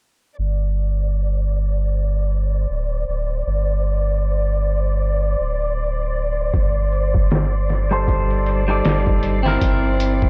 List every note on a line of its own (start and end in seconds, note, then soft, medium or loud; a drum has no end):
0.37 2.66 G1 medium
0.37 10.30 C5 medium
0.37 10.30 D5 medium
2.70 3.04 D1 medium
3.08 3.42 D1 medium
3.47 5.35 G1 medium
5.39 6.51 D1 medium
6.54 8.82 G1 medium
6.54 kick medium
6.54 closed hi-hat medium
6.92 closed hi-hat medium
7.14 kick medium
7.31 snare loud
7.31 closed hi-hat medium
7.69 snare soft
7.69 closed hi-hat medium
7.91 8.63 G3 medium
7.91 8.63 D#4 medium
7.91 8.63 A4 medium
7.91 8.64 C5 loud
7.91 closed hi-hat soft
8.08 kick loud
8.08 closed hi-hat medium
8.31 closed hi-hat soft
8.46 closed hi-hat medium
8.68 9.40 G3 medium
8.68 9.40 D#4 medium
8.68 9.41 A4 medium
8.68 9.41 D5 medium
8.85 9.19 G1 loud
8.85 snare loud
8.85 closed hi-hat medium
9.07 kick medium
9.23 9.58 G1 medium
9.23 closed hi-hat medium
9.43 10.30 C4 medium
9.43 10.30 E4 medium
9.43 snare soft
9.48 10.30 A#4 medium
9.61 10.30 G1 medium
9.61 kick medium
9.61 closed hi-hat medium
10.00 closed hi-hat medium
10.22 kick medium